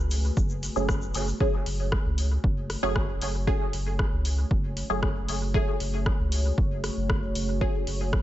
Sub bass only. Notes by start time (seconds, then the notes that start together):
0.00 C#2
0.37 F#1
0.76 F#1
1.15 F#1
1.66 F#1
2.05 C#2
2.44 F#1
2.83 F#1
3.22 F#1
3.73 F#1
4.12 C#2
4.51 F#1
4.90 F#1
5.28 F#1
5.80 F#1
6.19 C#2
6.58 F#1
6.97 F#1
7.35 F#1
7.87 F#1